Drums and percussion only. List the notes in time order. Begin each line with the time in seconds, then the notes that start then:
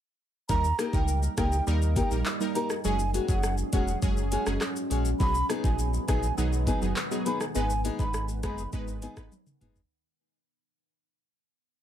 0.49 kick, shaker
0.64 shaker
0.79 cross-stick, closed hi-hat, shaker
0.93 kick, shaker
1.08 shaker
1.23 shaker
1.38 kick, cross-stick, closed hi-hat, shaker
1.52 shaker
1.67 shaker
1.82 shaker
1.96 kick, closed hi-hat, shaker
2.11 shaker
2.26 clap, shaker
2.41 shaker
2.55 closed hi-hat, shaker
2.70 cross-stick, shaker
2.85 shaker
2.99 shaker
3.14 closed hi-hat, shaker
3.29 kick, shaker
3.43 cross-stick, shaker
3.58 shaker
3.73 kick, closed hi-hat, shaker
3.88 shaker
4.02 kick, shaker
4.17 shaker
4.32 closed hi-hat, shaker
4.46 cross-stick, shaker
4.61 cross-stick, clap, shaker
4.76 shaker
4.91 closed hi-hat, shaker
5.05 shaker
5.20 kick, shaker
5.35 shaker
5.50 cross-stick, closed hi-hat, shaker
5.64 kick, shaker
5.79 shaker
5.94 shaker
6.08 kick, cross-stick, closed hi-hat, shaker
6.23 shaker
6.38 shaker
6.53 shaker
6.67 kick, closed hi-hat, shaker
6.82 shaker
6.96 clap, shaker
7.11 shaker
7.26 closed hi-hat, shaker
7.41 cross-stick, shaker
7.55 shaker
7.70 shaker
7.85 closed hi-hat, shaker
7.99 kick, shaker
8.14 cross-stick, shaker
8.28 shaker
8.43 kick, cross-stick, closed hi-hat, shaker
8.58 shaker
8.73 kick, shaker
8.88 shaker
9.02 closed hi-hat, shaker
9.17 kick, cross-stick, shaker
9.32 high tom, shaker
9.46 mid tom, shaker
9.61 closed hi-hat, mid tom, shaker
9.76 floor tom, shaker